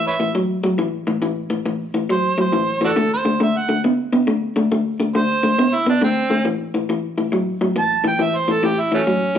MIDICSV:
0, 0, Header, 1, 3, 480
1, 0, Start_track
1, 0, Tempo, 435730
1, 1346, Time_signature, 4, 2, 24, 8
1, 10340, End_track
2, 0, Start_track
2, 0, Title_t, "Harmonica"
2, 0, Program_c, 0, 22
2, 81, Note_on_c, 0, 71, 50
2, 81, Note_on_c, 0, 73, 50
2, 81, Note_on_c, 0, 76, 72
2, 160, Note_off_c, 0, 73, 0
2, 170, Note_off_c, 0, 71, 0
2, 331, Note_off_c, 0, 76, 0
2, 2327, Note_on_c, 0, 72, 82
2, 2626, Note_off_c, 0, 72, 0
2, 2647, Note_on_c, 0, 72, 73
2, 3101, Note_off_c, 0, 72, 0
2, 3130, Note_on_c, 0, 62, 58
2, 3130, Note_on_c, 0, 66, 58
2, 3130, Note_on_c, 0, 69, 82
2, 3214, Note_off_c, 0, 66, 0
2, 3222, Note_off_c, 0, 62, 0
2, 3428, Note_off_c, 0, 69, 0
2, 3451, Note_on_c, 0, 72, 77
2, 3748, Note_off_c, 0, 72, 0
2, 3775, Note_on_c, 0, 76, 71
2, 3931, Note_on_c, 0, 78, 80
2, 3947, Note_off_c, 0, 76, 0
2, 4174, Note_off_c, 0, 78, 0
2, 5682, Note_on_c, 0, 72, 99
2, 6333, Note_on_c, 0, 64, 82
2, 6349, Note_off_c, 0, 72, 0
2, 6474, Note_off_c, 0, 64, 0
2, 6490, Note_on_c, 0, 62, 80
2, 6632, Note_off_c, 0, 62, 0
2, 6653, Note_on_c, 0, 60, 92
2, 7105, Note_off_c, 0, 60, 0
2, 8578, Note_on_c, 0, 81, 91
2, 8873, Note_off_c, 0, 81, 0
2, 8893, Note_on_c, 0, 79, 74
2, 9061, Note_on_c, 0, 76, 75
2, 9078, Note_off_c, 0, 79, 0
2, 9214, Note_on_c, 0, 72, 82
2, 9231, Note_off_c, 0, 76, 0
2, 9381, Note_on_c, 0, 69, 75
2, 9397, Note_off_c, 0, 72, 0
2, 9533, Note_on_c, 0, 67, 77
2, 9550, Note_off_c, 0, 69, 0
2, 9696, Note_on_c, 0, 64, 73
2, 9713, Note_off_c, 0, 67, 0
2, 9838, Note_off_c, 0, 64, 0
2, 9852, Note_on_c, 0, 54, 57
2, 9852, Note_on_c, 0, 57, 57
2, 9852, Note_on_c, 0, 61, 82
2, 9923, Note_off_c, 0, 54, 0
2, 9943, Note_off_c, 0, 57, 0
2, 10340, Note_off_c, 0, 61, 0
2, 10340, End_track
3, 0, Start_track
3, 0, Title_t, "Clean electric guitar"
3, 0, Program_c, 1, 27
3, 0, Note_on_c, 1, 45, 71
3, 0, Note_on_c, 1, 52, 74
3, 186, Note_off_c, 1, 45, 0
3, 187, Note_off_c, 1, 52, 0
3, 217, Note_on_c, 1, 45, 67
3, 223, Note_on_c, 1, 52, 74
3, 368, Note_off_c, 1, 45, 0
3, 371, Note_off_c, 1, 52, 0
3, 384, Note_on_c, 1, 45, 71
3, 389, Note_on_c, 1, 54, 72
3, 668, Note_off_c, 1, 45, 0
3, 670, Note_off_c, 1, 54, 0
3, 700, Note_on_c, 1, 45, 66
3, 702, Note_on_c, 1, 54, 77
3, 849, Note_off_c, 1, 45, 0
3, 850, Note_off_c, 1, 54, 0
3, 861, Note_on_c, 1, 45, 66
3, 868, Note_on_c, 1, 52, 88
3, 1146, Note_off_c, 1, 45, 0
3, 1150, Note_off_c, 1, 52, 0
3, 1179, Note_on_c, 1, 45, 69
3, 1187, Note_on_c, 1, 52, 68
3, 1329, Note_off_c, 1, 45, 0
3, 1332, Note_off_c, 1, 52, 0
3, 1341, Note_on_c, 1, 45, 72
3, 1348, Note_on_c, 1, 52, 81
3, 1626, Note_off_c, 1, 45, 0
3, 1629, Note_off_c, 1, 52, 0
3, 1653, Note_on_c, 1, 45, 67
3, 1658, Note_on_c, 1, 52, 68
3, 1805, Note_off_c, 1, 45, 0
3, 1808, Note_off_c, 1, 52, 0
3, 1824, Note_on_c, 1, 45, 71
3, 1829, Note_on_c, 1, 52, 79
3, 2107, Note_off_c, 1, 45, 0
3, 2110, Note_off_c, 1, 52, 0
3, 2139, Note_on_c, 1, 45, 63
3, 2143, Note_on_c, 1, 52, 68
3, 2288, Note_off_c, 1, 45, 0
3, 2290, Note_off_c, 1, 52, 0
3, 2307, Note_on_c, 1, 45, 65
3, 2313, Note_on_c, 1, 54, 70
3, 2589, Note_off_c, 1, 45, 0
3, 2592, Note_off_c, 1, 54, 0
3, 2619, Note_on_c, 1, 45, 67
3, 2624, Note_on_c, 1, 54, 70
3, 2768, Note_off_c, 1, 45, 0
3, 2770, Note_off_c, 1, 54, 0
3, 2781, Note_on_c, 1, 45, 69
3, 2788, Note_on_c, 1, 52, 73
3, 3065, Note_off_c, 1, 45, 0
3, 3069, Note_off_c, 1, 52, 0
3, 3095, Note_on_c, 1, 45, 67
3, 3101, Note_on_c, 1, 52, 73
3, 3245, Note_off_c, 1, 45, 0
3, 3248, Note_off_c, 1, 52, 0
3, 3263, Note_on_c, 1, 50, 72
3, 3270, Note_on_c, 1, 57, 72
3, 3546, Note_off_c, 1, 50, 0
3, 3550, Note_off_c, 1, 57, 0
3, 3580, Note_on_c, 1, 50, 66
3, 3585, Note_on_c, 1, 57, 70
3, 3728, Note_off_c, 1, 50, 0
3, 3730, Note_off_c, 1, 57, 0
3, 3747, Note_on_c, 1, 50, 78
3, 3753, Note_on_c, 1, 57, 80
3, 4028, Note_off_c, 1, 50, 0
3, 4031, Note_off_c, 1, 57, 0
3, 4062, Note_on_c, 1, 50, 68
3, 4067, Note_on_c, 1, 57, 67
3, 4209, Note_off_c, 1, 50, 0
3, 4211, Note_off_c, 1, 57, 0
3, 4234, Note_on_c, 1, 50, 67
3, 4238, Note_on_c, 1, 59, 72
3, 4511, Note_off_c, 1, 50, 0
3, 4513, Note_off_c, 1, 59, 0
3, 4545, Note_on_c, 1, 50, 61
3, 4549, Note_on_c, 1, 59, 74
3, 4690, Note_off_c, 1, 50, 0
3, 4692, Note_off_c, 1, 59, 0
3, 4706, Note_on_c, 1, 50, 75
3, 4712, Note_on_c, 1, 57, 74
3, 4987, Note_off_c, 1, 50, 0
3, 4990, Note_off_c, 1, 57, 0
3, 5023, Note_on_c, 1, 50, 65
3, 5029, Note_on_c, 1, 57, 76
3, 5169, Note_off_c, 1, 50, 0
3, 5172, Note_off_c, 1, 57, 0
3, 5196, Note_on_c, 1, 50, 70
3, 5198, Note_on_c, 1, 57, 74
3, 5472, Note_off_c, 1, 50, 0
3, 5473, Note_off_c, 1, 57, 0
3, 5504, Note_on_c, 1, 50, 66
3, 5511, Note_on_c, 1, 57, 71
3, 5650, Note_off_c, 1, 50, 0
3, 5653, Note_off_c, 1, 57, 0
3, 5672, Note_on_c, 1, 50, 74
3, 5675, Note_on_c, 1, 57, 74
3, 5950, Note_off_c, 1, 50, 0
3, 5952, Note_off_c, 1, 57, 0
3, 5985, Note_on_c, 1, 50, 64
3, 5989, Note_on_c, 1, 57, 67
3, 6130, Note_off_c, 1, 50, 0
3, 6132, Note_off_c, 1, 57, 0
3, 6152, Note_on_c, 1, 50, 64
3, 6158, Note_on_c, 1, 59, 80
3, 6431, Note_off_c, 1, 50, 0
3, 6433, Note_off_c, 1, 59, 0
3, 6460, Note_on_c, 1, 50, 62
3, 6461, Note_on_c, 1, 59, 71
3, 6608, Note_off_c, 1, 50, 0
3, 6608, Note_off_c, 1, 59, 0
3, 6627, Note_on_c, 1, 50, 77
3, 6634, Note_on_c, 1, 57, 77
3, 6908, Note_off_c, 1, 50, 0
3, 6912, Note_off_c, 1, 57, 0
3, 6941, Note_on_c, 1, 50, 67
3, 6945, Note_on_c, 1, 57, 68
3, 7088, Note_off_c, 1, 50, 0
3, 7091, Note_off_c, 1, 57, 0
3, 7104, Note_on_c, 1, 45, 77
3, 7110, Note_on_c, 1, 52, 84
3, 7387, Note_off_c, 1, 45, 0
3, 7390, Note_off_c, 1, 52, 0
3, 7428, Note_on_c, 1, 45, 61
3, 7432, Note_on_c, 1, 52, 74
3, 7572, Note_off_c, 1, 45, 0
3, 7574, Note_off_c, 1, 52, 0
3, 7592, Note_on_c, 1, 45, 70
3, 7599, Note_on_c, 1, 52, 86
3, 7872, Note_off_c, 1, 45, 0
3, 7875, Note_off_c, 1, 52, 0
3, 7906, Note_on_c, 1, 45, 61
3, 7909, Note_on_c, 1, 52, 66
3, 8051, Note_off_c, 1, 45, 0
3, 8053, Note_off_c, 1, 52, 0
3, 8065, Note_on_c, 1, 45, 78
3, 8074, Note_on_c, 1, 54, 77
3, 8348, Note_off_c, 1, 45, 0
3, 8352, Note_off_c, 1, 54, 0
3, 8384, Note_on_c, 1, 45, 69
3, 8389, Note_on_c, 1, 54, 74
3, 8531, Note_off_c, 1, 45, 0
3, 8533, Note_off_c, 1, 54, 0
3, 8546, Note_on_c, 1, 45, 72
3, 8552, Note_on_c, 1, 52, 75
3, 8829, Note_off_c, 1, 45, 0
3, 8832, Note_off_c, 1, 52, 0
3, 8855, Note_on_c, 1, 45, 70
3, 8862, Note_on_c, 1, 52, 79
3, 9007, Note_off_c, 1, 45, 0
3, 9011, Note_off_c, 1, 52, 0
3, 9022, Note_on_c, 1, 45, 73
3, 9028, Note_on_c, 1, 52, 85
3, 9308, Note_off_c, 1, 45, 0
3, 9311, Note_off_c, 1, 52, 0
3, 9341, Note_on_c, 1, 45, 67
3, 9347, Note_on_c, 1, 52, 72
3, 9491, Note_off_c, 1, 45, 0
3, 9494, Note_off_c, 1, 52, 0
3, 9507, Note_on_c, 1, 45, 77
3, 9514, Note_on_c, 1, 52, 77
3, 9791, Note_off_c, 1, 45, 0
3, 9794, Note_off_c, 1, 52, 0
3, 9823, Note_on_c, 1, 45, 62
3, 9827, Note_on_c, 1, 52, 68
3, 9972, Note_off_c, 1, 45, 0
3, 9974, Note_off_c, 1, 52, 0
3, 9991, Note_on_c, 1, 45, 63
3, 9995, Note_on_c, 1, 54, 75
3, 10274, Note_off_c, 1, 45, 0
3, 10275, Note_off_c, 1, 54, 0
3, 10303, Note_on_c, 1, 45, 65
3, 10340, Note_off_c, 1, 45, 0
3, 10340, End_track
0, 0, End_of_file